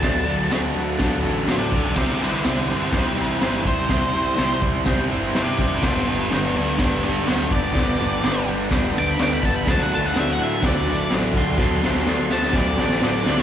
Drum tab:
CC |----------------|x---------------|----------------|x---------------|
HH |o---o---o---o---|----o---o---o---|o---o---o---o---|----o---o---o---|
SD |o---o---o---o---|o---o---o---o---|o---o---o---o---|o---o---o---o---|
BD |o-------o-----o-|o-------o-----o-|o-----o-o-----o-|o-------o-----o-|

CC |----------------|x---------------|----------------|
HH |o---o---o---o---|----o---o---o---|----------------|
SD |o---o---o---o---|o---o---o---o---|o-ooo-ooo-ooo-oo|
BD |o-------o-----o-|o-------o-----o-|o-------o-------|